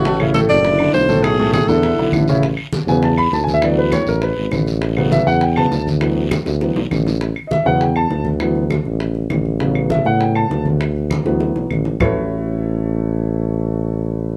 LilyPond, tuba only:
\new Staff \with { instrumentName = "Tuba" } { \clef bass \time 4/4 \key a \major \tempo 4 = 200 a,,4. fis,,4. b,,4~ | b,,4. e,4 b,,8 a,,4~ | a,,8 r4 e,4. d,4~ | d,4. a,,4 gis,,8 a,,4~ |
a,,4. e,4. d,4~ | d,4. d,4 b,,8 a,,4~ | a,,8 r4 e,4. d,4~ | d,4. a,,4. a,,4~ |
a,,4. a,4. d,4~ | d,4. d,4 b,,8 a,,4 | a,,1~ | a,,1 | }